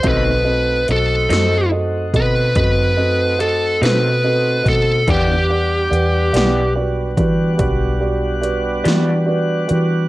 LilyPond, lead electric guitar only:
\new Staff \with { instrumentName = "Lead electric guitar" } { \time 12/8 \key e \minor \tempo 4. = 48 b'4 a'4 r8 b'8 b'4 a'8 b'4 a'8 | g'2 r1 | }